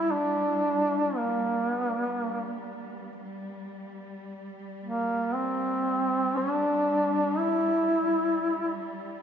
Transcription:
Already playing: G3 E4
0.11 D4
1.16 A#3
1.72 B3
1.87 A#3
2.03 B3
2.18 A#3
3.24 G3
4.84 A#3
5.35 C4
6.37 D4
7.39 E4

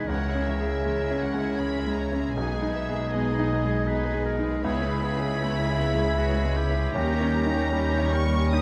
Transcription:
Already playing: G#3 D#4 G#4 D#5 G#6
0.07 C#2 C#3 E3 C#4 E4 A#4 C#5 F#5
0.28 G#3 E4 G#4 E5
0.35 C#4
0.46 E3 C#4 E4 C#5 E5
0.60 G#4
0.65 G#3 E4 G#4 E5
0.83 E3 G#3 C#4 E4 C#5
1.02 G#3 E4 G#4 E5
1.11 C#4
1.20 E3 C#4 E4 C#5 F#5
1.34 G#3
1.39 G#3 E4 G#4 E5
1.58 E3 C#4 E4 G#4 C#5 B5
1.78 G#3 E4 G#4 E5
1.86 G#3
1.94 E3 C#4 A#5
1.99 E4 C#5
2.12 C#4
2.17 G#3 E4 G#4 E5
2.34 B1 B2 G#3 B3 D#4 G#4 G#5 G#6
2.38 G#4 B4
2.56 G#3 B3 G#4 B4
2.62 D#4
2.73 B3 D#4 G#4 B4 E5
2.89 G#4
2.93 G#3 B3 G#4 B4
3.11 G#3 B3 D#4 G#4 B4 D#5
3.31 G#3 B3 G#4 B4
3.39 D#4
3.48 B3 D#4 G#4 B4
3.64 G#3 G#4 B4
3.70 G#3 B3
3.87 B3 D#4 G#4 B4
4.05 G#3 B3 G#4 B4
4.13 G#3
4.25 B3 D#4 G#4 A#4 B4
4.39 D#4
4.44 G#3 B3 G#4 B4
4.63 C#2 C#3 B3 E4 G#4 B4 C#5 B5 G#6
4.83 G#3 C#4 G#4 B4
4.91 E4
5.02 B3 E4 G#4 B4 C#5
5.17 G#4
5.22 G#3 C#4 G#4 B4
5.41 G#3 B3 E4 B4 C#5
5.60 G#3 C#4 G#4 B4
5.69 E4
5.79 B3 E4 B4 C#5
5.94 G#3
5.98 G#3 C#4 G#4 B4
6.17 B3 E4 F#4 G#4 B4 C#5
6.35 G#3 C#4 G#4 B4
6.45 G#3
6.55 B3 E4 G4 B4 C#5
6.70 E4
6.75 G#3 C#4 G#4 B4
6.94 D#2 D#3 G3 C#4 D#4 A#4 A#5 G6
7.14 D#3 D#4 G4 C#5
7.21 C#4
7.33 G3 C#4 D#4 A#4
7.46 D#4
7.52 D#3 D#4 G4 C#5
7.71 G3 C#4 D#4 G4 A#4
7.92 D#3 D#4 G4 C#5
7.99 C#4
8.12 G3 C#4 D#4 A#4 C#6
8.26 G3
8.33 D#3 D#4 G4 C#5
8.52 G3 C#4 D#4 G4 A#4 D#6 G6

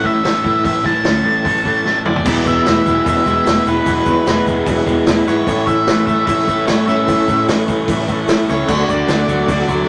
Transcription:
Already playing: A3 C#4 E4
0.03 A2 E3 E5, kick
0.24 A1 A2 E3 A3, snare, open hi-hat
0.43 A1 A2 E3 A3 E4, kick
0.63 A1 A2 E3 E5, kick, open hi-hat
0.83 A1 A2 E3 E4 A5, kick, snare
1.04 D2 A2 E3 C#4, snare, open hi-hat
1.23 A1 A2 E3 A3
1.44 A1 A2 E3 A3, kick, open hi-hat
1.64 A2 E3 A3, kick
1.85 A1 A2 E3 A3, snare
2.05 F#1 A2 E3 E4 D5, mid tom
2.16 floor tom
2.25 E1 E2 B2 E3 G#3 B3 E4 G#4 B4 E5 B5, kick, crash, shaker
2.45 E1 E3 G#3 B3 E4 E5, kick, shaker
2.65 E1 E3 G#3 B3 E4, snare, open hi-hat, shaker
2.86 E1 G#3, kick, shaker
3.05 E1 E2 B2 E3 G#3 B3 E4 E5, kick, open hi-hat, shaker
3.25 E1 E3 G#3 B3 E4, kick, shaker
3.44 E1 E3 G#3 B3 E4, snare, open hi-hat, shaker
3.65 E1 E3 G#3 B3 E4 B4, shaker
3.85 E1 E2 B2 E3 G#3 B3 E4, kick, open hi-hat, shaker
4.06 E2 E3 G#3 B3 E4, kick, shaker
4.25 E1 E3 G#3 B3 E4, snare, open hi-hat, shaker
4.46 E1 G#3, kick, shaker
4.66 E1 E2 B2 E3 G#3 B3 E4, kick, open hi-hat, shaker
4.77 snare
4.86 E1 E3 G#3 B3 E4, kick, shaker
5.05 E1 E3 G#3 B3 E4, snare, open hi-hat, shaker
5.24 G#1 E3 G#3 B3 E4 C#5, snare, shaker
5.45 A1 A2 E3 A3 C#4 E4 A4 C#5 C#6, kick, open hi-hat, shaker
5.65 A1 A3 C#4 E4 E5, kick, shaker
5.85 A1 E3 A3 C#4 E4, snare, open hi-hat, shaker
6.07 A1 A3 E5, kick, shaker
6.25 A1 A2 E3 A3 C#4 E4 E5, kick, open hi-hat, shaker
6.38 snare
6.45 A1 A3 C#4 E4, kick, shaker
6.66 A1 E3 A3 C#4 E4 C#5, snare, open hi-hat, shaker
6.86 A1 A3 C#4 E4 E5, snare, shaker
7.06 A1 A2 E3 A3 C#4 E4, kick, open hi-hat, shaker
7.27 A2 A3 C#4 E4, kick, shaker
7.46 A1 E3 A3 C#4 E4, snare, open hi-hat, shaker
7.68 A1 A3, kick, shaker
7.87 A1 A2 E3 A3 C#4 E4, kick, open hi-hat, shaker
7.99 snare
8.07 A1 A3 C#4 E4, kick, shaker
8.27 A1 E3 A3 C#4 E4, snare, open hi-hat, shaker
8.47 C#2 A3 C#4 E4 C#5, snare, shaker
8.66 D2 D3 A3 D4 F#4 D5 F#5 D6, kick, crash, shaker
8.88 D2 A3 D4 F#4 D5, kick, shaker
9.07 D2 D3 A3 D4 F#4, snare, open hi-hat, shaker
9.28 D2 F#3, kick, shaker
9.47 D2 D3 A3 D4 F#4, kick, open hi-hat, shaker
9.52 D5
9.59 snare
9.67 D2 F#3 A3 D4 F#4, kick, shaker

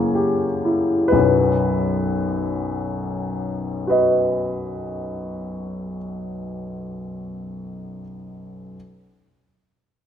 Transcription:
Already playing: F#2 C#3 E3 A#3 C#5
0.15 G4
0.65 E4
1.08 B4
1.12 B1 F#2
3.87 F#4 B4 D#5

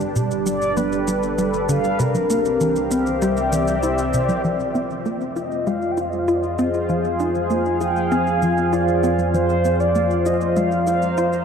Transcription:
Already playing: G1 G3 D4 G4
0.00 shaker
0.16 B2, shaker
0.31 shaker
0.46 G3 B4 D5, shaker
0.62 A4, shaker
0.77 B3 B4, high conga, shaker
0.92 shaker
1.08 G3, shaker
1.23 shaker
1.38 G3, shaker
1.54 shaker
1.69 D3 F5, shaker
1.84 shaker
1.99 C2 C3 C4 A#4, shaker
2.07 G4
2.15 high conga, shaker
2.30 A#3, shaker
2.45 shaker
2.61 E3, shaker
2.76 shaker
2.91 C4 F5, shaker
3.00 D5
3.07 E5, shaker
3.22 G3 E5, shaker
3.37 shaker
3.52 E3, shaker
3.67 shaker
3.83 E4 C5, shaker
3.98 shaker
4.13 C3, shaker
4.29 high conga, shaker
4.44 F2 F3 F4 D5, shaker
4.60 shaker
4.65 C5
4.75 C4, shaker
4.90 shaker
5.05 A#3, shaker
5.21 shaker
5.36 F4 D#5, shaker
5.51 shaker
5.67 G#3 G#4 F5, shaker
5.82 shaker
5.92 G5
5.97 F4 F5, shaker
6.10 D#5, shaker
6.19 F5
6.28 F4 D#5, shaker
6.35 D5
6.42 D#5, shaker
6.58 C4, shaker
6.74 shaker
6.89 F3 F5, shaker
7.04 shaker
7.20 D#4, shaker
7.35 shaker
7.50 A#3, shaker
7.66 shaker
7.81 F4 G5, shaker
7.96 shaker
8.11 C4 G#5, shaker
8.27 shaker
8.42 F3, shaker
8.57 shaker
8.73 F4 D5, shaker
8.88 shaker
9.03 C4, shaker
9.19 high conga, shaker
9.34 F3 C5, shaker
9.49 shaker
9.65 C4, shaker
9.80 D5, shaker
9.95 A#3, shaker
10.10 shaker
10.26 F4 D#5, shaker
10.41 shaker
10.53 G#3 F5 A#5, shaker
10.72 shaker
10.87 F4 F5, shaker
11.02 shaker
11.17 F4 C5, shaker
11.33 shaker

